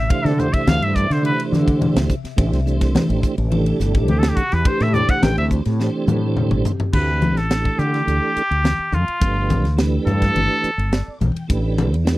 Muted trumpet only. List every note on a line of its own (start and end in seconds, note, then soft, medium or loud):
0.00 0.11 E5 medium
0.10 0.27 F5 loud
0.25 0.41 A4 medium
0.40 0.55 C5 loud
0.54 0.70 E5 loud
0.69 0.85 F5 loud
0.84 0.97 E5 loud
0.96 1.14 D5 loud
1.12 1.25 C5 medium
1.26 1.43 B4 medium
4.10 4.20 G4 medium
4.19 4.31 A4 medium
4.29 4.38 G4 medium
4.36 4.55 F#4 medium
4.53 4.69 B4 medium
4.68 4.84 C5 medium
4.83 4.95 E5 medium
4.94 5.11 D5 loud
5.10 5.25 F#5 loud
5.23 5.38 G5 loud
5.38 5.46 E5 loud
6.94 7.39 B4 medium
7.38 7.81 A4 medium
7.79 8.96 G4 loud
8.94 9.79 F4 medium
10.07 11.17 A4 loud